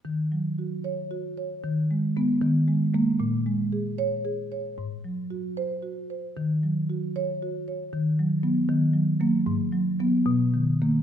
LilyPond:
\new Staff \with { instrumentName = "Marimba" } { \clef bass \time 6/8 \key ees \minor \tempo 4. = 76 << { r4. des''4 r8 | r4 ces'8 r4 bes8 | r4. des''4 r8 | r4. c''4 r8 |
r4. des''4 r8 | r4 ces'8 r4 bes8 | r4 ces'8 r4 ais8 | } \\ { ees8 ges8 ges'4 ges'8 des''8 | ees8 aes8 aes8 ees8 aes8 aes8 | bes,8 aes8 aes'4 aes'8 des''8 | aes,8 ges8 ges'4 ges'8 c''8 |
ees8 ges8 ges'4 ges'8 des''8 | ees8 ges8 ges8 ees8 ges8 ges8 | aes,8 ges8 ges8 b,8 dis8 dis8 | } >> }